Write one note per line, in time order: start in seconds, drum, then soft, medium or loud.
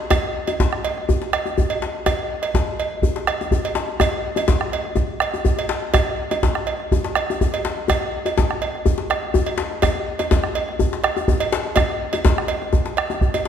0.10 bombo rim medium
0.10 bombo low medium
0.10 cowbell medium
0.10 djembe bass medium
0.24 djembe slap soft
0.47 bombo rim soft
0.47 cowbell soft
0.47 djembe slap soft
0.47 djembe tone medium
0.60 bombo low medium
0.60 djembe slap medium
0.60 djembe bass medium
0.73 bombo rim medium
0.85 cowbell soft
0.98 bombo rim soft
1.09 bombo low medium
1.09 djembe bass medium
1.22 djembe slap soft
1.33 bombo rim medium
1.33 cowbell soft
1.46 djembe tone soft
1.58 bombo low medium
1.58 djembe bass medium
1.70 cowbell soft
1.82 djembe slap medium
1.95 djembe slap soft
2.06 bombo rim medium
2.06 bombo low medium
2.06 cowbell soft
2.06 djembe bass medium
2.19 djembe slap soft
2.42 bombo rim soft
2.42 cowbell soft
2.42 djembe slap soft
2.54 bombo low medium
2.54 djembe slap medium
2.54 djembe bass medium
2.80 cowbell soft
3.02 bombo low medium
3.02 djembe bass medium
3.16 djembe slap soft
3.27 bombo rim medium
3.27 cowbell soft
3.27 djembe slap soft
3.41 djembe tone soft
3.51 bombo low medium
3.51 djembe bass medium
3.65 cowbell soft
3.75 djembe slap medium
3.89 djembe slap soft
4.00 bombo rim medium
4.00 bombo low medium
4.00 cowbell medium
4.00 djembe bass medium
4.12 djembe slap soft
4.36 cowbell soft
4.36 djembe tone medium
4.48 bombo low medium
4.48 djembe slap medium
4.48 djembe bass medium
4.61 bombo rim medium
4.72 bombo rim soft
4.72 cowbell soft
4.72 djembe slap soft
4.84 bombo rim soft
4.84 djembe slap soft
4.96 bombo rim soft
4.96 bombo low medium
4.96 djembe slap soft
4.96 djembe bass medium
5.20 bombo rim medium
5.20 cowbell soft
5.34 bombo rim soft
5.34 djembe tone soft
5.45 bombo low medium
5.45 djembe bass medium
5.59 cowbell soft
5.69 djembe slap medium
5.82 djembe slap soft
5.94 bombo rim medium
5.94 bombo low medium
5.94 cowbell medium
5.94 djembe bass medium
6.08 djembe slap soft
6.31 bombo rim soft
6.31 cowbell soft
6.31 djembe slap soft
6.31 djembe tone soft
6.43 bombo low medium
6.43 djembe slap medium
6.43 djembe bass medium
6.55 bombo rim medium
6.67 cowbell soft
6.80 bombo rim soft
6.92 bombo low medium
6.92 djembe bass medium
7.04 djembe slap medium
7.15 bombo rim medium
7.15 cowbell soft
7.15 djembe slap soft
7.30 djembe tone medium
7.41 bombo low medium
7.41 djembe bass medium
7.54 cowbell soft
7.65 djembe slap medium
7.77 djembe slap soft
7.88 bombo rim medium
7.88 bombo low medium
7.88 cowbell medium
7.88 djembe bass medium
8.01 djembe slap soft
8.26 bombo rim soft
8.26 cowbell soft
8.26 djembe slap soft
8.26 djembe tone medium
8.38 bombo low medium
8.38 djembe slap medium
8.38 djembe bass medium
8.51 bombo rim medium
8.62 cowbell soft
8.75 bombo rim soft
8.86 bombo low medium
8.86 djembe bass medium
8.98 djembe slap medium
9.10 bombo rim medium
9.10 cowbell soft
9.10 djembe slap soft
9.34 bombo low medium
9.34 djembe bass medium
9.46 cowbell soft
9.58 djembe slap medium
9.71 djembe slap soft
9.82 bombo rim medium
9.82 bombo low medium
9.82 cowbell medium
9.82 djembe bass medium
9.95 djembe slap soft
10.19 bombo rim soft
10.19 cowbell soft
10.19 djembe slap soft
10.19 djembe tone medium
10.31 bombo low medium
10.31 djembe slap medium
10.31 djembe bass medium
10.44 bombo rim medium
10.55 cowbell soft
10.69 bombo rim soft
10.79 bombo low medium
10.79 djembe bass medium
10.93 djembe slap medium
11.04 bombo rim medium
11.04 cowbell soft
11.04 djembe slap soft
11.17 djembe tone medium
11.28 bombo low medium
11.28 djembe bass medium
11.40 cowbell soft
11.52 djembe slap medium
11.65 djembe slap soft
11.76 bombo rim medium
11.76 bombo low medium
11.76 cowbell medium
11.76 djembe slap soft
11.76 djembe bass medium
11.89 bombo rim soft
11.89 djembe slap soft
12.13 cowbell soft
12.13 djembe slap soft
12.13 djembe tone medium
12.25 bombo rim soft
12.25 bombo low loud
12.25 djembe slap medium
12.25 djembe bass medium
12.38 bombo rim medium
12.48 cowbell soft
12.48 djembe slap soft
12.62 bombo rim soft
12.62 djembe slap soft
12.73 bombo low medium
12.73 djembe slap soft
12.73 djembe bass medium
12.86 djembe slap soft
12.97 bombo rim loud
12.97 cowbell soft
12.97 djembe slap soft
13.10 bombo rim soft
13.10 djembe tone medium
13.21 bombo rim soft
13.21 bombo low loud
13.21 djembe bass soft
13.34 bombo rim soft
13.34 cowbell soft
13.34 djembe bass soft